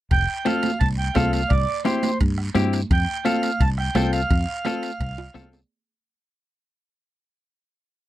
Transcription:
0.11 0.25 F1 medium
0.11 0.48 G5 loud
0.11 bombo low medium
0.11 high timbale medium
0.11 long guiro medium
0.45 0.70 C4 medium
0.45 0.70 F4 medium
0.45 0.71 A4 medium
0.45 0.79 F5 medium
0.45 bombo rim medium
0.45 high conga medium
0.45 high timbale medium
0.45 short guiro medium
0.63 high conga medium
0.63 high timbale medium
0.63 short guiro medium
0.80 1.09 C2 medium
0.80 0.88 A5 medium
0.80 bombo low medium
0.80 high timbale medium
0.80 long guiro medium
0.98 1.17 G5 medium
1.15 1.44 C2 medium
1.15 1.40 C4 medium
1.15 1.41 F4 medium
1.15 1.41 A4 medium
1.15 1.31 F5 medium
1.15 bombo low medium
1.15 bombo rim medium
1.15 high conga medium
1.15 high timbale medium
1.15 low timbale medium
1.15 short guiro medium
1.33 1.51 F5 medium
1.33 high timbale medium
1.33 short guiro medium
1.50 1.65 C2 loud
1.50 1.83 D5 loud
1.50 bombo low medium
1.50 high timbale medium
1.50 long guiro medium
1.85 2.10 C4 medium
1.85 2.10 E4 medium
1.85 2.10 G4 medium
1.85 2.18 C5 medium
1.85 bombo rim medium
1.85 high conga medium
1.85 high timbale medium
1.85 short guiro medium
2.03 high conga medium
2.03 high timbale medium
2.03 short guiro medium
2.20 2.49 G2 medium
2.20 bombo low medium
2.20 high timbale medium
2.20 long guiro medium
2.38 bombo rim medium
2.55 2.83 G2 medium
2.55 2.80 C4 medium
2.55 2.80 E4 medium
2.55 2.80 G4 loud
2.55 bombo rim medium
2.55 high conga medium
2.55 high timbale medium
2.55 short guiro medium
2.73 high timbale medium
2.73 short guiro medium
2.90 3.05 F2 loud
2.90 3.24 G5 loud
2.90 bombo low medium
2.90 high timbale medium
2.90 long guiro medium
3.25 3.50 C4 medium
3.25 3.50 F4 medium
3.25 3.50 A4 medium
3.25 3.62 F5 medium
3.25 bombo rim medium
3.25 high conga medium
3.25 high timbale medium
3.25 short guiro medium
3.43 high timbale medium
3.43 short guiro medium
3.60 3.88 C2 medium
3.60 3.69 A5 loud
3.60 bombo low medium
3.60 high timbale medium
3.60 long guiro medium
3.78 4.11 G5 medium
3.78 bombo rim medium
3.95 4.23 C2 medium
3.95 4.20 C4 medium
3.95 4.20 F4 medium
3.95 4.20 A4 medium
3.95 bombo rim medium
3.95 high conga medium
3.95 high timbale medium
3.95 low timbale medium
3.95 short guiro medium
4.13 5.49 F5 medium
4.13 high timbale medium
4.13 short guiro medium
4.30 4.44 F2 medium
4.30 bombo low medium
4.30 high timbale medium
4.30 long guiro medium
4.65 4.90 C4 medium
4.65 4.90 F4 medium
4.65 4.90 A4 medium
4.65 bombo rim medium
4.65 high conga medium
4.65 high timbale medium
4.65 short guiro medium
4.83 high timbale medium
4.83 short guiro medium
5.00 5.28 C2 medium
5.00 bombo low medium
5.00 high timbale medium
5.00 long guiro medium
5.18 high timbale medium
5.34 5.63 C2 medium
5.34 5.59 C4 medium
5.34 5.59 F4 medium
5.34 5.60 A4 medium
5.34 bombo rim medium
5.34 high conga medium
5.34 short guiro medium
5.42 low timbale medium
5.53 low timbale medium
5.53 short guiro medium

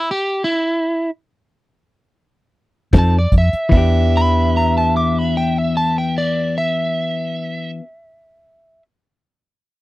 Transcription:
0.11 0.42 G4 medium
0.44 1.10 E4 medium
2.93 3.25 F2 medium
2.93 3.17 F3 medium
2.93 3.18 C4 medium
2.93 3.18 D#4 medium
2.93 3.18 A4 medium
2.93 kick medium
2.93 snare loud
2.93 closed hi-hat medium
2.98 3.16 A5 medium
3.19 3.34 D5 medium
3.32 3.49 F2 medium
3.32 kick medium
3.32 closed hi-hat medium
3.38 3.74 E5 medium
3.53 muted fingered electric bass stroke soft
3.53 closed hi-hat soft
3.69 7.78 E2 medium
3.69 7.80 E3 medium
3.69 7.83 B3 medium
3.69 7.71 E5 loud
3.69 kick loud
3.69 crash medium
3.75 7.85 D4 medium
3.75 7.88 G4 medium
4.17 4.54 B5 medium
4.57 4.75 A#5 medium
4.78 4.94 A5 medium
4.97 5.19 D6 medium
5.19 5.35 B5 medium
5.37 5.58 G5 medium
5.58 5.75 E5 medium
5.77 5.96 A5 medium
5.98 6.15 G5 medium
6.18 6.55 D5 medium
6.58 8.82 E5 medium

